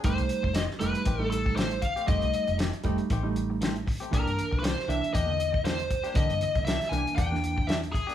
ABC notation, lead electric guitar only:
X:1
M:4/4
L:1/16
Q:"Swing 16ths" 1/4=118
K:Cdor
V:1 name="Lead electric guitar"
c4 e2 =B4 A2 c2 f2 | e4 z12 | B3- B/2 =B/2 c2 =e2 _e4 c4 | e4 =e2 _a2 g4 e2 _A2 |]